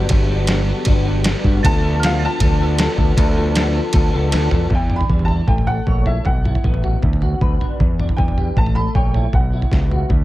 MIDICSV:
0, 0, Header, 1, 7, 480
1, 0, Start_track
1, 0, Tempo, 384123
1, 136, Time_signature, 4, 2, 24, 8
1, 12798, End_track
2, 0, Start_track
2, 0, Title_t, "Synth bell"
2, 0, Program_c, 0, 98
2, 2037, Note_on_c, 0, 93, 90
2, 2489, Note_off_c, 0, 93, 0
2, 2497, Note_on_c, 0, 89, 78
2, 2735, Note_off_c, 0, 89, 0
2, 2742, Note_on_c, 0, 93, 78
2, 5343, Note_off_c, 0, 93, 0
2, 12798, End_track
3, 0, Start_track
3, 0, Title_t, "Upright piano"
3, 0, Program_c, 1, 0
3, 2064, Note_on_c, 1, 81, 109
3, 2551, Note_off_c, 1, 81, 0
3, 2560, Note_on_c, 1, 77, 90
3, 2769, Note_off_c, 1, 77, 0
3, 2811, Note_on_c, 1, 81, 101
3, 5378, Note_off_c, 1, 81, 0
3, 5931, Note_on_c, 1, 79, 79
3, 6197, Note_on_c, 1, 83, 82
3, 6239, Note_off_c, 1, 79, 0
3, 6534, Note_off_c, 1, 83, 0
3, 6560, Note_on_c, 1, 81, 80
3, 6847, Note_on_c, 1, 79, 72
3, 6875, Note_off_c, 1, 81, 0
3, 7085, Note_on_c, 1, 78, 90
3, 7097, Note_off_c, 1, 79, 0
3, 7580, Note_on_c, 1, 76, 71
3, 7585, Note_off_c, 1, 78, 0
3, 7821, Note_on_c, 1, 78, 71
3, 7825, Note_off_c, 1, 76, 0
3, 8730, Note_off_c, 1, 78, 0
3, 10203, Note_on_c, 1, 79, 75
3, 10706, Note_off_c, 1, 79, 0
3, 10716, Note_on_c, 1, 81, 81
3, 10935, Note_on_c, 1, 83, 87
3, 10954, Note_off_c, 1, 81, 0
3, 11183, Note_on_c, 1, 79, 79
3, 11184, Note_off_c, 1, 83, 0
3, 11627, Note_off_c, 1, 79, 0
3, 11677, Note_on_c, 1, 78, 66
3, 12574, Note_off_c, 1, 78, 0
3, 12798, End_track
4, 0, Start_track
4, 0, Title_t, "String machine"
4, 0, Program_c, 2, 50
4, 0, Note_on_c, 2, 59, 73
4, 0, Note_on_c, 2, 66, 77
4, 0, Note_on_c, 2, 67, 83
4, 2008, Note_off_c, 2, 66, 0
4, 2018, Note_off_c, 2, 67, 0
4, 2056, Note_on_c, 2, 65, 89
4, 2058, Note_on_c, 2, 50, 82
4, 5842, Note_off_c, 2, 59, 0
4, 5852, Note_off_c, 2, 65, 0
4, 5853, Note_off_c, 2, 50, 0
4, 12798, End_track
5, 0, Start_track
5, 0, Title_t, "Clean electric guitar"
5, 0, Program_c, 3, 27
5, 0, Note_on_c, 3, 59, 93
5, 0, Note_on_c, 3, 62, 92
5, 120, Note_on_c, 3, 43, 93
5, 127, Note_off_c, 3, 59, 0
5, 128, Note_on_c, 3, 54, 92
5, 129, Note_on_c, 3, 50, 100
5, 131, Note_off_c, 3, 62, 0
5, 132, Note_on_c, 3, 59, 109
5, 136, Note_on_c, 3, 62, 103
5, 348, Note_off_c, 3, 43, 0
5, 355, Note_off_c, 3, 50, 0
5, 356, Note_off_c, 3, 54, 0
5, 363, Note_on_c, 3, 43, 79
5, 370, Note_on_c, 3, 50, 87
5, 371, Note_on_c, 3, 54, 83
5, 372, Note_off_c, 3, 59, 0
5, 376, Note_off_c, 3, 62, 0
5, 377, Note_on_c, 3, 59, 82
5, 381, Note_on_c, 3, 62, 97
5, 584, Note_off_c, 3, 43, 0
5, 590, Note_off_c, 3, 50, 0
5, 592, Note_off_c, 3, 54, 0
5, 599, Note_on_c, 3, 43, 89
5, 602, Note_off_c, 3, 59, 0
5, 605, Note_on_c, 3, 50, 101
5, 607, Note_on_c, 3, 54, 105
5, 607, Note_on_c, 3, 59, 104
5, 611, Note_off_c, 3, 62, 0
5, 616, Note_on_c, 3, 62, 90
5, 831, Note_off_c, 3, 43, 0
5, 842, Note_off_c, 3, 50, 0
5, 844, Note_off_c, 3, 54, 0
5, 846, Note_on_c, 3, 43, 77
5, 854, Note_off_c, 3, 59, 0
5, 857, Note_on_c, 3, 50, 89
5, 859, Note_on_c, 3, 54, 79
5, 859, Note_on_c, 3, 59, 89
5, 863, Note_off_c, 3, 62, 0
5, 868, Note_on_c, 3, 62, 90
5, 1062, Note_off_c, 3, 43, 0
5, 1068, Note_off_c, 3, 50, 0
5, 1076, Note_off_c, 3, 54, 0
5, 1077, Note_on_c, 3, 43, 88
5, 1083, Note_on_c, 3, 50, 95
5, 1091, Note_off_c, 3, 59, 0
5, 1091, Note_on_c, 3, 54, 94
5, 1095, Note_off_c, 3, 62, 0
5, 1096, Note_on_c, 3, 59, 106
5, 1100, Note_on_c, 3, 62, 107
5, 1309, Note_off_c, 3, 43, 0
5, 1312, Note_off_c, 3, 50, 0
5, 1319, Note_off_c, 3, 54, 0
5, 1324, Note_on_c, 3, 43, 78
5, 1327, Note_on_c, 3, 50, 92
5, 1329, Note_off_c, 3, 59, 0
5, 1334, Note_on_c, 3, 54, 92
5, 1334, Note_on_c, 3, 59, 87
5, 1339, Note_off_c, 3, 62, 0
5, 1344, Note_on_c, 3, 62, 92
5, 1541, Note_off_c, 3, 43, 0
5, 1549, Note_off_c, 3, 50, 0
5, 1550, Note_off_c, 3, 54, 0
5, 1556, Note_on_c, 3, 43, 104
5, 1563, Note_off_c, 3, 59, 0
5, 1564, Note_on_c, 3, 50, 96
5, 1564, Note_on_c, 3, 54, 108
5, 1565, Note_off_c, 3, 62, 0
5, 1568, Note_on_c, 3, 59, 109
5, 1570, Note_on_c, 3, 62, 111
5, 1799, Note_off_c, 3, 43, 0
5, 1800, Note_off_c, 3, 50, 0
5, 1804, Note_off_c, 3, 54, 0
5, 1814, Note_on_c, 3, 43, 91
5, 1815, Note_on_c, 3, 50, 98
5, 1819, Note_off_c, 3, 59, 0
5, 1819, Note_on_c, 3, 54, 87
5, 1824, Note_on_c, 3, 59, 97
5, 1827, Note_off_c, 3, 62, 0
5, 1832, Note_on_c, 3, 62, 97
5, 2022, Note_off_c, 3, 50, 0
5, 2037, Note_on_c, 3, 50, 95
5, 2038, Note_off_c, 3, 43, 0
5, 2039, Note_off_c, 3, 54, 0
5, 2044, Note_off_c, 3, 62, 0
5, 2044, Note_on_c, 3, 53, 95
5, 2046, Note_off_c, 3, 59, 0
5, 2049, Note_on_c, 3, 62, 103
5, 2051, Note_on_c, 3, 59, 106
5, 2054, Note_on_c, 3, 69, 100
5, 2277, Note_off_c, 3, 50, 0
5, 2280, Note_off_c, 3, 53, 0
5, 2282, Note_on_c, 3, 50, 86
5, 2285, Note_on_c, 3, 53, 82
5, 2288, Note_off_c, 3, 59, 0
5, 2291, Note_off_c, 3, 62, 0
5, 2293, Note_on_c, 3, 59, 94
5, 2296, Note_on_c, 3, 62, 92
5, 2297, Note_off_c, 3, 69, 0
5, 2302, Note_on_c, 3, 69, 89
5, 2523, Note_off_c, 3, 50, 0
5, 2528, Note_on_c, 3, 50, 91
5, 2534, Note_off_c, 3, 53, 0
5, 2537, Note_off_c, 3, 59, 0
5, 2538, Note_off_c, 3, 62, 0
5, 2538, Note_off_c, 3, 69, 0
5, 2539, Note_on_c, 3, 53, 98
5, 2542, Note_on_c, 3, 59, 102
5, 2543, Note_on_c, 3, 62, 93
5, 2543, Note_on_c, 3, 69, 100
5, 2770, Note_off_c, 3, 50, 0
5, 2773, Note_off_c, 3, 53, 0
5, 2775, Note_on_c, 3, 50, 74
5, 2778, Note_off_c, 3, 59, 0
5, 2778, Note_on_c, 3, 53, 80
5, 2783, Note_on_c, 3, 59, 84
5, 2786, Note_off_c, 3, 62, 0
5, 2789, Note_off_c, 3, 69, 0
5, 2791, Note_on_c, 3, 62, 81
5, 2794, Note_on_c, 3, 69, 89
5, 2994, Note_off_c, 3, 50, 0
5, 2998, Note_off_c, 3, 53, 0
5, 3005, Note_off_c, 3, 69, 0
5, 3009, Note_on_c, 3, 50, 93
5, 3010, Note_off_c, 3, 59, 0
5, 3011, Note_off_c, 3, 62, 0
5, 3013, Note_on_c, 3, 53, 99
5, 3015, Note_on_c, 3, 59, 92
5, 3016, Note_on_c, 3, 62, 106
5, 3020, Note_on_c, 3, 69, 96
5, 3234, Note_off_c, 3, 50, 0
5, 3242, Note_off_c, 3, 53, 0
5, 3249, Note_on_c, 3, 50, 82
5, 3255, Note_off_c, 3, 69, 0
5, 3257, Note_off_c, 3, 59, 0
5, 3257, Note_on_c, 3, 53, 84
5, 3259, Note_off_c, 3, 62, 0
5, 3262, Note_on_c, 3, 59, 91
5, 3264, Note_on_c, 3, 62, 93
5, 3270, Note_on_c, 3, 69, 93
5, 3478, Note_off_c, 3, 53, 0
5, 3479, Note_off_c, 3, 50, 0
5, 3492, Note_off_c, 3, 69, 0
5, 3493, Note_on_c, 3, 53, 98
5, 3494, Note_on_c, 3, 50, 97
5, 3499, Note_off_c, 3, 59, 0
5, 3499, Note_off_c, 3, 62, 0
5, 3504, Note_on_c, 3, 59, 98
5, 3504, Note_on_c, 3, 62, 111
5, 3507, Note_on_c, 3, 69, 118
5, 3698, Note_off_c, 3, 50, 0
5, 3706, Note_off_c, 3, 53, 0
5, 3713, Note_on_c, 3, 50, 83
5, 3719, Note_off_c, 3, 69, 0
5, 3720, Note_off_c, 3, 59, 0
5, 3721, Note_on_c, 3, 53, 94
5, 3722, Note_off_c, 3, 62, 0
5, 3725, Note_on_c, 3, 59, 91
5, 3727, Note_on_c, 3, 62, 99
5, 3734, Note_on_c, 3, 69, 99
5, 3936, Note_off_c, 3, 50, 0
5, 3947, Note_off_c, 3, 53, 0
5, 3951, Note_on_c, 3, 50, 90
5, 3954, Note_off_c, 3, 59, 0
5, 3958, Note_off_c, 3, 62, 0
5, 3958, Note_off_c, 3, 69, 0
5, 3962, Note_on_c, 3, 53, 95
5, 3969, Note_on_c, 3, 59, 105
5, 3973, Note_on_c, 3, 62, 104
5, 3973, Note_on_c, 3, 69, 106
5, 4172, Note_off_c, 3, 50, 0
5, 4180, Note_off_c, 3, 53, 0
5, 4182, Note_off_c, 3, 62, 0
5, 4183, Note_off_c, 3, 59, 0
5, 4183, Note_off_c, 3, 69, 0
5, 4187, Note_on_c, 3, 50, 87
5, 4195, Note_on_c, 3, 53, 90
5, 4197, Note_on_c, 3, 62, 85
5, 4198, Note_on_c, 3, 59, 84
5, 4198, Note_on_c, 3, 69, 94
5, 4413, Note_off_c, 3, 50, 0
5, 4425, Note_off_c, 3, 53, 0
5, 4426, Note_off_c, 3, 59, 0
5, 4428, Note_on_c, 3, 50, 97
5, 4432, Note_off_c, 3, 62, 0
5, 4435, Note_off_c, 3, 69, 0
5, 4440, Note_on_c, 3, 53, 86
5, 4441, Note_on_c, 3, 59, 96
5, 4447, Note_on_c, 3, 62, 92
5, 4450, Note_on_c, 3, 69, 90
5, 4650, Note_off_c, 3, 50, 0
5, 4656, Note_off_c, 3, 59, 0
5, 4659, Note_off_c, 3, 53, 0
5, 4665, Note_on_c, 3, 50, 83
5, 4666, Note_off_c, 3, 62, 0
5, 4666, Note_off_c, 3, 69, 0
5, 4671, Note_on_c, 3, 59, 84
5, 4674, Note_on_c, 3, 53, 89
5, 4681, Note_on_c, 3, 62, 80
5, 4681, Note_on_c, 3, 69, 83
5, 4899, Note_off_c, 3, 50, 0
5, 4903, Note_off_c, 3, 53, 0
5, 4911, Note_off_c, 3, 59, 0
5, 4914, Note_on_c, 3, 50, 83
5, 4917, Note_off_c, 3, 69, 0
5, 4918, Note_off_c, 3, 62, 0
5, 4918, Note_on_c, 3, 53, 104
5, 4926, Note_on_c, 3, 59, 97
5, 4932, Note_on_c, 3, 69, 106
5, 4933, Note_on_c, 3, 62, 100
5, 5130, Note_off_c, 3, 50, 0
5, 5132, Note_off_c, 3, 53, 0
5, 5141, Note_off_c, 3, 62, 0
5, 5143, Note_off_c, 3, 59, 0
5, 5145, Note_on_c, 3, 50, 85
5, 5147, Note_on_c, 3, 53, 83
5, 5150, Note_off_c, 3, 69, 0
5, 5156, Note_on_c, 3, 62, 94
5, 5158, Note_on_c, 3, 59, 93
5, 5165, Note_on_c, 3, 69, 86
5, 5368, Note_off_c, 3, 50, 0
5, 5376, Note_off_c, 3, 53, 0
5, 5381, Note_off_c, 3, 59, 0
5, 5383, Note_on_c, 3, 50, 97
5, 5384, Note_off_c, 3, 62, 0
5, 5391, Note_off_c, 3, 69, 0
5, 5391, Note_on_c, 3, 53, 88
5, 5396, Note_on_c, 3, 59, 106
5, 5399, Note_on_c, 3, 62, 103
5, 5406, Note_on_c, 3, 69, 110
5, 5620, Note_off_c, 3, 50, 0
5, 5621, Note_off_c, 3, 53, 0
5, 5625, Note_off_c, 3, 59, 0
5, 5626, Note_off_c, 3, 62, 0
5, 5631, Note_off_c, 3, 69, 0
5, 5635, Note_on_c, 3, 50, 85
5, 5636, Note_on_c, 3, 53, 89
5, 5640, Note_on_c, 3, 59, 101
5, 5641, Note_on_c, 3, 62, 100
5, 5646, Note_on_c, 3, 69, 103
5, 5867, Note_off_c, 3, 50, 0
5, 5868, Note_off_c, 3, 53, 0
5, 5870, Note_off_c, 3, 59, 0
5, 5870, Note_off_c, 3, 62, 0
5, 5873, Note_off_c, 3, 69, 0
5, 5881, Note_on_c, 3, 52, 64
5, 6118, Note_on_c, 3, 62, 60
5, 6371, Note_on_c, 3, 55, 58
5, 6620, Note_on_c, 3, 64, 56
5, 6838, Note_off_c, 3, 52, 0
5, 6843, Note_on_c, 3, 57, 58
5, 6845, Note_off_c, 3, 62, 0
5, 6852, Note_off_c, 3, 55, 0
5, 6856, Note_off_c, 3, 64, 0
5, 7091, Note_on_c, 3, 69, 54
5, 7349, Note_on_c, 3, 73, 68
5, 7570, Note_on_c, 3, 64, 64
5, 7810, Note_off_c, 3, 57, 0
5, 7813, Note_off_c, 3, 64, 0
5, 7814, Note_off_c, 3, 69, 0
5, 7817, Note_on_c, 3, 47, 62
5, 7822, Note_off_c, 3, 73, 0
5, 8056, Note_on_c, 3, 64, 59
5, 8308, Note_on_c, 3, 59, 60
5, 8535, Note_on_c, 3, 66, 58
5, 8776, Note_off_c, 3, 66, 0
5, 8778, Note_off_c, 3, 64, 0
5, 8779, Note_off_c, 3, 47, 0
5, 8790, Note_on_c, 3, 50, 56
5, 9023, Note_on_c, 3, 66, 58
5, 9267, Note_on_c, 3, 71, 68
5, 9503, Note_on_c, 3, 62, 66
5, 9741, Note_off_c, 3, 62, 0
5, 9742, Note_off_c, 3, 66, 0
5, 9745, Note_off_c, 3, 50, 0
5, 9747, Note_on_c, 3, 52, 66
5, 9989, Note_on_c, 3, 62, 59
5, 10223, Note_off_c, 3, 59, 0
5, 10228, Note_on_c, 3, 59, 58
5, 10465, Note_on_c, 3, 67, 58
5, 10702, Note_off_c, 3, 67, 0
5, 10703, Note_off_c, 3, 52, 0
5, 10704, Note_off_c, 3, 62, 0
5, 10711, Note_on_c, 3, 57, 64
5, 10749, Note_off_c, 3, 59, 0
5, 10749, Note_off_c, 3, 71, 0
5, 10944, Note_on_c, 3, 69, 57
5, 11199, Note_on_c, 3, 73, 66
5, 11440, Note_on_c, 3, 64, 65
5, 11660, Note_off_c, 3, 69, 0
5, 11664, Note_off_c, 3, 57, 0
5, 11666, Note_on_c, 3, 47, 61
5, 11668, Note_off_c, 3, 64, 0
5, 11668, Note_off_c, 3, 73, 0
5, 11914, Note_on_c, 3, 64, 57
5, 12161, Note_on_c, 3, 59, 56
5, 12390, Note_on_c, 3, 66, 54
5, 12618, Note_off_c, 3, 47, 0
5, 12622, Note_off_c, 3, 66, 0
5, 12623, Note_off_c, 3, 64, 0
5, 12627, Note_off_c, 3, 59, 0
5, 12628, Note_on_c, 3, 50, 60
5, 12798, Note_off_c, 3, 50, 0
5, 12798, End_track
6, 0, Start_track
6, 0, Title_t, "Fingered electric bass"
6, 0, Program_c, 4, 33
6, 123, Note_on_c, 4, 31, 102
6, 891, Note_off_c, 4, 31, 0
6, 1082, Note_on_c, 4, 31, 89
6, 1659, Note_off_c, 4, 31, 0
6, 1802, Note_on_c, 4, 43, 87
6, 1997, Note_off_c, 4, 43, 0
6, 2049, Note_on_c, 4, 38, 97
6, 2813, Note_off_c, 4, 38, 0
6, 3000, Note_on_c, 4, 38, 99
6, 3576, Note_off_c, 4, 38, 0
6, 3719, Note_on_c, 4, 38, 89
6, 3913, Note_off_c, 4, 38, 0
6, 3963, Note_on_c, 4, 38, 107
6, 4729, Note_off_c, 4, 38, 0
6, 4923, Note_on_c, 4, 38, 97
6, 5116, Note_off_c, 4, 38, 0
6, 5183, Note_on_c, 4, 37, 82
6, 5392, Note_off_c, 4, 37, 0
6, 5420, Note_on_c, 4, 38, 91
6, 5631, Note_off_c, 4, 38, 0
6, 5656, Note_on_c, 4, 40, 82
6, 5868, Note_off_c, 4, 40, 0
6, 5882, Note_on_c, 4, 40, 77
6, 6267, Note_off_c, 4, 40, 0
6, 6366, Note_on_c, 4, 40, 76
6, 6751, Note_off_c, 4, 40, 0
6, 6840, Note_on_c, 4, 33, 80
6, 7228, Note_off_c, 4, 33, 0
6, 7334, Note_on_c, 4, 34, 78
6, 7717, Note_off_c, 4, 34, 0
6, 7817, Note_on_c, 4, 35, 83
6, 8199, Note_off_c, 4, 35, 0
6, 8304, Note_on_c, 4, 33, 78
6, 8684, Note_off_c, 4, 33, 0
6, 8792, Note_on_c, 4, 38, 79
6, 9169, Note_off_c, 4, 38, 0
6, 9261, Note_on_c, 4, 38, 81
6, 9451, Note_off_c, 4, 38, 0
6, 9748, Note_on_c, 4, 40, 85
6, 10127, Note_off_c, 4, 40, 0
6, 10228, Note_on_c, 4, 40, 79
6, 10607, Note_off_c, 4, 40, 0
6, 10702, Note_on_c, 4, 33, 84
6, 11083, Note_off_c, 4, 33, 0
6, 11183, Note_on_c, 4, 34, 80
6, 11563, Note_off_c, 4, 34, 0
6, 11661, Note_on_c, 4, 35, 80
6, 12041, Note_off_c, 4, 35, 0
6, 12141, Note_on_c, 4, 37, 82
6, 12520, Note_off_c, 4, 37, 0
6, 12613, Note_on_c, 4, 38, 84
6, 12798, Note_off_c, 4, 38, 0
6, 12798, End_track
7, 0, Start_track
7, 0, Title_t, "Drums"
7, 112, Note_on_c, 9, 53, 70
7, 123, Note_on_c, 9, 36, 108
7, 237, Note_off_c, 9, 53, 0
7, 248, Note_off_c, 9, 36, 0
7, 592, Note_on_c, 9, 53, 70
7, 606, Note_on_c, 9, 38, 113
7, 717, Note_off_c, 9, 53, 0
7, 731, Note_off_c, 9, 38, 0
7, 743, Note_on_c, 9, 38, 37
7, 868, Note_off_c, 9, 38, 0
7, 1063, Note_on_c, 9, 53, 68
7, 1080, Note_on_c, 9, 36, 103
7, 1188, Note_off_c, 9, 53, 0
7, 1205, Note_off_c, 9, 36, 0
7, 1555, Note_on_c, 9, 53, 78
7, 1568, Note_on_c, 9, 38, 105
7, 1680, Note_off_c, 9, 53, 0
7, 1693, Note_off_c, 9, 38, 0
7, 1805, Note_on_c, 9, 36, 92
7, 1930, Note_off_c, 9, 36, 0
7, 2050, Note_on_c, 9, 36, 112
7, 2057, Note_on_c, 9, 53, 74
7, 2175, Note_off_c, 9, 36, 0
7, 2182, Note_off_c, 9, 53, 0
7, 2540, Note_on_c, 9, 53, 81
7, 2553, Note_on_c, 9, 38, 116
7, 2665, Note_off_c, 9, 53, 0
7, 2678, Note_off_c, 9, 38, 0
7, 3003, Note_on_c, 9, 53, 75
7, 3006, Note_on_c, 9, 36, 107
7, 3128, Note_off_c, 9, 53, 0
7, 3131, Note_off_c, 9, 36, 0
7, 3480, Note_on_c, 9, 53, 79
7, 3494, Note_on_c, 9, 38, 113
7, 3605, Note_off_c, 9, 53, 0
7, 3619, Note_off_c, 9, 38, 0
7, 3724, Note_on_c, 9, 36, 92
7, 3849, Note_off_c, 9, 36, 0
7, 3964, Note_on_c, 9, 36, 106
7, 3968, Note_on_c, 9, 53, 73
7, 4089, Note_off_c, 9, 36, 0
7, 4093, Note_off_c, 9, 53, 0
7, 4442, Note_on_c, 9, 53, 74
7, 4456, Note_on_c, 9, 38, 114
7, 4567, Note_off_c, 9, 53, 0
7, 4581, Note_off_c, 9, 38, 0
7, 4589, Note_on_c, 9, 38, 33
7, 4714, Note_off_c, 9, 38, 0
7, 4908, Note_on_c, 9, 53, 66
7, 4918, Note_on_c, 9, 36, 105
7, 5033, Note_off_c, 9, 53, 0
7, 5043, Note_off_c, 9, 36, 0
7, 5401, Note_on_c, 9, 53, 73
7, 5415, Note_on_c, 9, 38, 64
7, 5526, Note_off_c, 9, 53, 0
7, 5540, Note_off_c, 9, 38, 0
7, 5640, Note_on_c, 9, 43, 94
7, 5765, Note_off_c, 9, 43, 0
7, 5873, Note_on_c, 9, 43, 72
7, 5879, Note_on_c, 9, 36, 88
7, 5998, Note_off_c, 9, 43, 0
7, 6004, Note_off_c, 9, 36, 0
7, 6119, Note_on_c, 9, 47, 68
7, 6244, Note_off_c, 9, 47, 0
7, 6257, Note_on_c, 9, 43, 77
7, 6368, Note_on_c, 9, 36, 89
7, 6382, Note_off_c, 9, 43, 0
7, 6490, Note_on_c, 9, 43, 69
7, 6493, Note_off_c, 9, 36, 0
7, 6599, Note_off_c, 9, 43, 0
7, 6599, Note_on_c, 9, 43, 68
7, 6724, Note_off_c, 9, 43, 0
7, 6843, Note_on_c, 9, 43, 67
7, 6845, Note_on_c, 9, 36, 90
7, 6968, Note_off_c, 9, 43, 0
7, 6970, Note_off_c, 9, 36, 0
7, 6976, Note_on_c, 9, 43, 66
7, 7090, Note_off_c, 9, 43, 0
7, 7090, Note_on_c, 9, 43, 76
7, 7215, Note_off_c, 9, 43, 0
7, 7333, Note_on_c, 9, 36, 97
7, 7458, Note_off_c, 9, 36, 0
7, 7570, Note_on_c, 9, 43, 78
7, 7695, Note_off_c, 9, 43, 0
7, 7807, Note_on_c, 9, 43, 70
7, 7815, Note_on_c, 9, 36, 93
7, 7932, Note_off_c, 9, 43, 0
7, 7940, Note_off_c, 9, 36, 0
7, 8066, Note_on_c, 9, 47, 68
7, 8188, Note_on_c, 9, 43, 77
7, 8191, Note_off_c, 9, 47, 0
7, 8301, Note_on_c, 9, 36, 97
7, 8313, Note_off_c, 9, 43, 0
7, 8420, Note_on_c, 9, 43, 69
7, 8426, Note_off_c, 9, 36, 0
7, 8545, Note_off_c, 9, 43, 0
7, 8546, Note_on_c, 9, 43, 72
7, 8671, Note_off_c, 9, 43, 0
7, 8779, Note_on_c, 9, 43, 64
7, 8784, Note_on_c, 9, 36, 91
7, 8904, Note_off_c, 9, 43, 0
7, 8909, Note_off_c, 9, 36, 0
7, 8912, Note_on_c, 9, 43, 72
7, 9021, Note_off_c, 9, 43, 0
7, 9021, Note_on_c, 9, 43, 75
7, 9146, Note_off_c, 9, 43, 0
7, 9264, Note_on_c, 9, 36, 95
7, 9389, Note_off_c, 9, 36, 0
7, 9512, Note_on_c, 9, 43, 76
7, 9637, Note_off_c, 9, 43, 0
7, 9749, Note_on_c, 9, 36, 93
7, 9749, Note_on_c, 9, 43, 71
7, 9874, Note_off_c, 9, 36, 0
7, 9874, Note_off_c, 9, 43, 0
7, 9991, Note_on_c, 9, 47, 68
7, 10110, Note_on_c, 9, 43, 74
7, 10116, Note_off_c, 9, 47, 0
7, 10227, Note_on_c, 9, 36, 99
7, 10235, Note_off_c, 9, 43, 0
7, 10349, Note_on_c, 9, 43, 68
7, 10352, Note_off_c, 9, 36, 0
7, 10469, Note_off_c, 9, 43, 0
7, 10469, Note_on_c, 9, 43, 69
7, 10594, Note_off_c, 9, 43, 0
7, 10706, Note_on_c, 9, 36, 86
7, 10707, Note_on_c, 9, 43, 66
7, 10827, Note_off_c, 9, 43, 0
7, 10827, Note_on_c, 9, 43, 71
7, 10831, Note_off_c, 9, 36, 0
7, 10948, Note_off_c, 9, 43, 0
7, 10948, Note_on_c, 9, 43, 72
7, 11073, Note_off_c, 9, 43, 0
7, 11185, Note_on_c, 9, 36, 89
7, 11310, Note_off_c, 9, 36, 0
7, 11426, Note_on_c, 9, 43, 75
7, 11551, Note_off_c, 9, 43, 0
7, 11661, Note_on_c, 9, 36, 94
7, 11662, Note_on_c, 9, 43, 73
7, 11786, Note_off_c, 9, 36, 0
7, 11786, Note_off_c, 9, 43, 0
7, 12024, Note_on_c, 9, 43, 76
7, 12141, Note_on_c, 9, 36, 100
7, 12149, Note_off_c, 9, 43, 0
7, 12156, Note_on_c, 9, 38, 69
7, 12266, Note_off_c, 9, 36, 0
7, 12281, Note_off_c, 9, 38, 0
7, 12390, Note_on_c, 9, 43, 74
7, 12515, Note_off_c, 9, 43, 0
7, 12620, Note_on_c, 9, 36, 97
7, 12624, Note_on_c, 9, 43, 73
7, 12745, Note_off_c, 9, 36, 0
7, 12749, Note_off_c, 9, 43, 0
7, 12798, End_track
0, 0, End_of_file